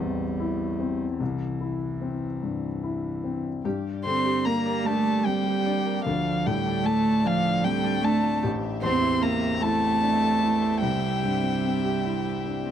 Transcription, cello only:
0.00 1.19 G3 medium
1.20 3.40 E3 soft
4.05 4.48 C4 medium
4.46 4.86 A#3 medium
4.84 5.26 A3 medium
5.25 6.05 G3 medium
6.06 6.46 F3 medium
6.45 6.86 G3 medium
6.84 7.26 A3 medium
7.24 7.65 F3 medium
7.63 8.03 G3 medium
8.04 8.42 A3 medium
8.82 9.23 C4 medium
9.21 9.61 A#3 medium
9.62 10.82 A3 medium
10.81 12.71 G3 medium

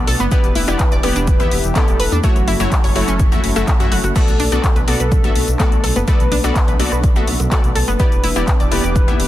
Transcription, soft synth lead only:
0.31 0.94 B4 loud
1.03 1.66 B4 loud
1.75 2.19 A4 medium
2.24 2.86 F#4 loud
4.16 4.78 A4 loud
4.87 5.50 A4 loud
5.59 6.03 A4 medium
6.07 6.70 B4 loud
7.99 8.62 B4 loud
8.71 9.28 B4 loud

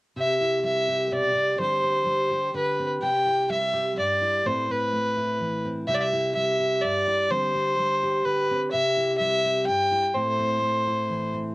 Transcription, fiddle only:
0.18 0.62 E5 medium
0.66 1.09 E5 medium
1.14 1.57 D5 medium
1.61 2.51 C5 medium
2.56 2.89 B4 medium
3.03 3.47 G5 medium
3.52 3.95 E5 medium
3.99 4.48 D5 medium
4.46 4.73 C5 medium
4.71 5.65 B4 medium
5.88 5.96 E5 medium
5.95 6.03 D5 medium
6.01 6.35 E5 medium
6.36 6.83 E5 medium
6.82 7.32 D5 medium
7.30 8.26 C5 medium
8.25 8.61 B4 medium
8.71 9.16 E5 medium
9.18 9.63 E5 medium
9.67 10.16 G5 medium
10.15 11.33 C5 medium

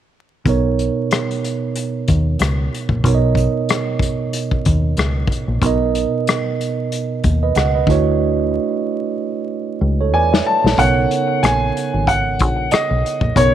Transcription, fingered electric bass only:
0.46 0.89 B1 medium
2.09 2.35 D#2 medium
2.40 2.67 C#2 medium
2.89 3.01 A#1 medium
3.04 3.47 B1 medium
4.67 4.93 D#2 medium
4.98 5.25 C#2 medium
5.48 5.59 A#1 medium
5.62 6.05 B1 medium
7.24 7.51 D#2 medium
7.56 7.83 C#2 medium
7.87 8.57 D2 medium
9.81 10.13 C#2 medium
10.13 10.40 E2 medium
10.64 10.76 A#1 medium
10.78 11.05 B1 medium
11.43 11.70 A#1 medium
11.94 12.41 G#1 medium
12.41 12.67 A#1 medium
12.72 muted fingered electric bass stroke soft
12.91 13.02 B1 medium
13.22 13.33 A#1 medium
13.36 13.54 B1 medium

